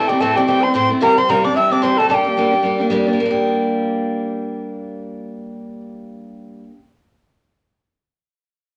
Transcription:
0.00 0.10 A4 medium
0.07 0.20 G3 medium
0.07 0.21 A3 soft
0.07 0.21 E4 medium
0.07 0.22 G4 medium
0.07 0.22 G5 medium
0.12 0.21 C4 soft
0.20 0.36 A2 medium
0.20 0.37 E3 medium
0.20 0.36 A3 medium
0.20 0.37 C4 medium
0.20 0.34 E4 medium
0.20 0.34 A4 medium
0.20 0.37 A5 medium
0.35 0.47 G3 medium
0.35 0.48 A3 soft
0.35 0.47 C4 soft
0.35 0.47 E4 soft
0.35 0.46 G4 medium
0.35 0.47 G5 medium
0.46 0.63 E3 medium
0.46 0.73 G3 medium
0.46 0.63 A3 medium
0.46 0.63 C4 medium
0.46 0.61 E4 medium
0.46 0.63 G4 medium
0.46 0.65 G5 medium
0.61 0.74 A3 soft
0.61 0.74 E4 soft
0.61 0.72 C5 medium
0.61 0.75 C6 loud
0.65 0.74 C4 soft
0.73 0.90 A2 medium
0.73 0.90 E3 medium
0.73 0.90 A3 loud
0.73 0.89 C4 medium
0.73 0.90 C4 medium
0.73 0.88 E4 loud
0.73 0.88 C5 medium
0.73 0.89 C6 medium
0.89 1.02 A3 soft
0.89 1.01 C4 soft
0.89 1.01 E4 soft
1.00 1.16 C3 medium
1.00 1.17 E3 medium
1.00 1.17 G3 medium
1.00 1.16 A#3 medium
1.00 1.17 C4 medium
1.00 1.15 G4 medium
1.00 1.15 A#4 medium
1.00 1.19 A#5 loud
1.17 1.28 G3 soft
1.17 1.29 C4 medium
1.17 1.29 C4 soft
1.17 1.29 G4 medium
1.17 1.31 C6 medium
1.27 1.44 C3 medium
1.27 1.44 E3 medium
1.27 1.44 G3 medium
1.27 1.43 A#3 medium
1.27 1.44 C4 medium
1.27 1.42 G4 medium
1.27 1.42 A#4 medium
1.27 1.46 A#5 medium
1.43 1.54 G3 soft
1.43 1.56 C4 soft
1.43 1.55 D4 medium
1.43 1.55 G4 medium
1.43 1.58 D5 medium
1.43 1.55 D6 medium
1.54 1.70 E3 soft
1.54 1.71 G3 medium
1.54 1.70 C4 medium
1.54 1.72 E4 medium
1.54 1.69 G4 medium
1.54 1.72 E5 medium
1.54 1.73 E6 medium
1.70 1.82 G3 soft
1.70 1.82 C4 medium
1.70 1.84 D4 medium
1.70 1.82 G4 medium
1.70 1.85 D5 medium
1.70 1.84 D6 medium
1.82 1.98 C3 medium
1.82 1.98 E3 medium
1.82 1.98 G3 medium
1.82 1.98 C4 medium
1.82 1.99 C4 medium
1.82 1.96 G4 medium
1.82 1.99 C5 medium
1.82 1.99 C6 medium
1.97 2.08 G3 soft
1.97 2.11 A3 medium
1.97 2.10 C4 soft
1.97 2.09 G4 soft
1.97 2.09 A4 medium
1.97 2.09 A5 medium
2.09 2.25 G3 medium
2.09 2.88 G3 medium
2.09 2.25 A#3 medium
2.09 2.25 D4 medium
2.09 2.87 G4 medium
2.09 2.24 G4 medium
2.09 2.15 A5 medium
2.14 2.87 G5 medium
2.25 2.36 A#3 soft
2.25 2.37 D4 soft
2.25 2.37 G4 medium
2.37 2.52 G3 medium
2.37 2.52 A#3 medium
2.37 2.52 D4 medium
2.37 2.50 G4 medium
2.51 2.62 A#3 soft
2.51 2.64 D4 soft
2.51 2.63 G4 medium
2.63 2.79 G3 medium
2.63 2.79 A#3 medium
2.63 2.78 D4 medium
2.63 2.77 G4 medium
2.78 2.90 A#3 soft
2.78 2.90 D4 medium
2.78 2.90 G4 medium
2.90 3.06 G3 medium
2.90 3.06 A#3 medium
2.90 3.05 D4 medium
2.90 3.04 G4 medium
3.05 3.19 A#3 soft
3.05 3.18 D4 medium
3.05 3.17 G4 medium
3.13 6.63 G3 medium
3.20 6.70 A#3 medium
3.25 6.75 D4 medium
3.31 6.81 G4 medium

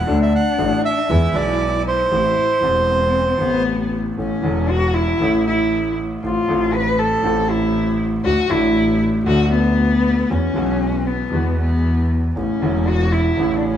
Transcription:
0.00 0.19 F#5 medium
0.07 0.29 D2 medium
0.07 0.29 D3 medium
0.07 0.29 F#3 medium
0.07 0.29 A3 medium
0.07 1.10 D4 medium
0.07 0.29 D4 medium
0.07 0.29 A4 medium
0.23 0.33 E5 medium
0.36 0.82 F#5 medium
0.58 0.80 A1 medium
0.58 0.80 A2 medium
0.58 0.80 F#3 medium
0.58 0.80 A3 medium
0.58 0.80 D4 medium
0.58 0.80 A4 medium
0.85 1.37 E5 medium
1.08 1.31 E2 medium
1.08 1.31 E3 medium
1.08 1.31 G#3 medium
1.08 1.31 B3 medium
1.08 2.11 E4 medium
1.08 1.31 G#4 medium
1.33 2.08 B1 medium
1.33 2.08 B2 medium
1.33 2.07 E3 medium
1.33 2.07 G#3 medium
1.33 2.08 B3 medium
1.33 1.83 D5 medium
1.37 2.09 G#4 medium
1.88 3.63 C5 medium
2.11 2.33 A1 medium
2.11 2.33 A2 medium
2.11 2.33 E3 medium
2.11 2.33 A3 medium
2.11 2.33 C4 medium
2.11 2.64 E4 medium
2.11 2.33 G4 medium
2.61 3.36 E1 medium
2.61 3.36 E2 medium
2.61 3.35 E3 medium
2.61 3.36 A3 medium
2.61 3.38 C4 medium
2.61 3.36 C4 medium
2.65 3.37 G4 medium
3.38 4.14 A1 medium
3.38 4.14 A2 medium
3.38 4.14 C3 medium
3.38 4.13 E3 medium
3.38 4.13 A3 medium
3.38 3.88 B3 loud
3.38 4.15 G4 medium
4.17 4.40 A1 medium
4.17 4.40 A1 soft
4.17 4.39 A2 soft
4.17 4.39 E3 soft
4.17 4.39 A3 soft
4.17 4.39 C#4 soft
4.17 4.71 C#4 medium
4.17 4.40 A4 soft
4.42 5.17 E1 medium
4.42 5.17 E2 medium
4.42 5.16 E3 medium
4.42 5.17 A3 medium
4.42 5.17 C#4 medium
4.42 5.18 A4 medium
4.69 4.96 F#4 loud
4.94 5.46 E4 loud
5.19 6.18 A1 medium
5.19 6.18 A2 medium
5.19 6.17 E3 medium
5.19 6.18 A3 medium
5.19 6.18 C#4 medium
5.23 6.19 A4 medium
5.47 5.94 E4 medium
6.23 6.45 A1 medium
6.23 6.44 A2 medium
6.23 6.44 F3 soft
6.23 6.44 A3 soft
6.23 6.45 C4 soft
6.23 6.75 F4 medium
6.23 6.45 A4 medium
6.46 7.20 A1 medium
6.46 7.21 A1 loud
6.46 7.20 A2 medium
6.46 7.19 F3 medium
6.46 7.20 A3 medium
6.46 7.21 C4 medium
6.51 7.21 A4 medium
6.74 7.01 B4 medium
6.99 7.51 A4 medium
7.21 8.20 A1 medium
7.21 8.20 A1 loud
7.21 8.20 A2 medium
7.21 8.19 F3 medium
7.21 8.20 A3 medium
7.21 8.20 C4 medium
7.21 8.21 A4 medium
7.50 8.00 E4 medium
8.24 8.46 D2 medium
8.24 8.47 D2 medium
8.24 8.46 D3 medium
8.24 8.46 F#3 soft
8.24 8.46 A3 soft
8.24 8.47 D4 soft
8.24 8.52 F#4 loud
8.24 8.46 A4 medium
8.48 9.23 A1 medium
8.48 9.23 A1 loud
8.48 9.23 A2 medium
8.48 9.22 F#3 medium
8.48 9.23 A3 medium
8.48 9.24 D4 medium
8.48 9.02 E4 loud
8.48 9.24 A4 medium
9.24 10.24 D2 medium
9.24 10.24 D3 medium
9.24 10.23 F#3 medium
9.24 10.24 A3 medium
9.24 10.24 D4 medium
9.24 9.51 F#4 loud
9.28 10.25 A4 medium
9.53 10.32 B3 loud
10.29 10.51 E2 medium
10.29 10.52 E2 medium
10.29 10.52 E3 soft
10.29 10.52 G#3 soft
10.29 10.52 B3 soft
10.29 11.08 C#4 medium
10.29 10.52 F#4 soft
10.54 11.29 B1 medium
10.54 11.29 B2 medium
10.54 11.28 E3 medium
10.54 11.29 G#3 medium
10.54 11.30 B3 medium
10.58 11.30 F#4 medium
11.07 11.59 B3 medium
11.30 12.31 E2 medium
11.30 12.32 E2 medium
11.30 11.32 E3 medium
11.30 12.31 E3 medium
11.30 12.31 G#3 medium
11.30 12.32 B3 medium
11.35 12.33 F#4 medium
11.60 12.08 B3 medium
12.36 12.58 A1 medium
12.36 12.58 A2 soft
12.36 12.58 C#3 soft
12.36 12.58 E3 soft
12.36 12.58 A3 soft
12.36 12.89 C#4 medium
12.36 12.58 E4 soft
12.60 13.36 E1 medium
12.60 13.36 E2 medium
12.60 13.34 C#3 medium
12.60 13.35 E3 medium
12.60 13.36 A3 medium
12.64 13.37 E4 medium
12.88 13.14 F#4 medium
13.12 13.58 E4 medium
13.37 13.77 A1 medium
13.37 13.77 A2 medium
13.37 13.77 C#3 medium
13.37 13.77 E3 medium
13.37 13.77 A3 medium
13.41 13.77 E4 medium
13.57 13.66 D4 medium
13.65 13.77 C#4 medium

